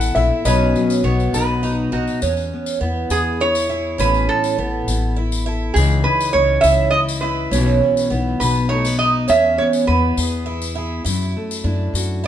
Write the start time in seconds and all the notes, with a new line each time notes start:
Already playing: A1 A2 E3 B3 E4 A4 E5 F#5
0.01 tambourine
0.15 A#1 E4 E5, tambourine
0.45 B1 B2 F#3 B3 C#4 D#4 B4 D#5, tambourine
0.49 F#4
0.76 F#3, tambourine
0.90 tambourine
1.03 B1 B3 C#5
1.20 tambourine
1.33 B1 D#4 B4, tambourine
1.63 D#4 F#4, tambourine
1.92 B1 D#4 F#4
2.08 tambourine
2.22 E2 C#4, tambourine
2.37 tambourine
2.53 B3
2.66 tambourine
2.81 E2 B3 E4
3.10 E2 E4 G#4, tambourine
3.41 E4 C#5
3.55 tambourine
3.69 E4 G#4
3.98 A1 A2 E3 B3 C#4 B4, tambourine
4.02 E4 A4
4.14 tambourine
4.29 B3 A4
4.44 tambourine
4.58 A1 B3 E4
4.87 A1 E4, tambourine
5.17 E4
5.32 tambourine
5.46 E4 A4
5.74 C#2 C#3 E3 C#4 D#4 G#4, tambourine
5.78 E4
5.91 tambourine
6.04 C#4 B4
6.20 tambourine
6.33 C#2 C#4 D#4 C#5
6.61 C#2 E4 E5, tambourine
6.90 D#4 E4 D#5
7.09 tambourine
7.21 E4 B4
7.51 B1 B2 E3 B3 C#4 E4, tambourine
7.56 F#4
7.67 tambourine
7.83 B3
7.97 tambourine
8.10 B1 B3 E4, tambourine
8.40 B1 B2 B4, tambourine
8.55 tambourine
8.69 A3 D#4 C#5
8.85 B3, tambourine
8.99 D#4 D#5
9.28 E2 C#4 E5, tambourine
9.58 B3 C#5
9.73 tambourine
9.87 E2 B3 E4 B4
10.17 E2 G#4, tambourine
10.46 E4
10.62 tambourine
10.75 E4 G#4
11.05 F#2 E4, tambourine
11.21 tambourine
11.36 A3
11.51 tambourine
11.64 F#2 D4 E4
11.94 F#2 F#4, tambourine
12.24 E4